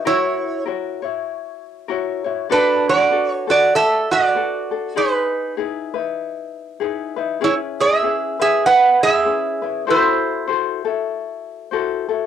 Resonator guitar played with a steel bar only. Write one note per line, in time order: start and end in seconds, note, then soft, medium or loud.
0.07 0.63 E4 medium
0.07 0.63 C#5 medium
2.52 2.85 D4 medium
2.52 2.89 B4 medium
2.89 3.46 F#4 medium
2.89 3.29 D5 loud
3.29 3.45 C#5 loud
3.50 3.72 F#4 medium
3.50 3.75 D5 medium
3.75 4.08 A4 medium
3.75 4.12 E5 loud
4.11 4.93 F#4 medium
4.11 4.93 D5 loud
4.97 5.54 D#4 medium
4.97 5.54 B4 medium
7.44 7.54 E4 medium
7.44 7.54 C#5 medium
7.80 8.37 G#4 medium
7.80 8.40 E5 medium
8.41 8.64 G#4 medium
8.41 8.65 E5 medium
8.66 9.00 B4 medium
8.66 9.03 F#5 loud
9.03 9.84 G#4 medium
9.03 9.91 E5 loud
9.90 10.46 E4 medium
9.90 10.46 C5 medium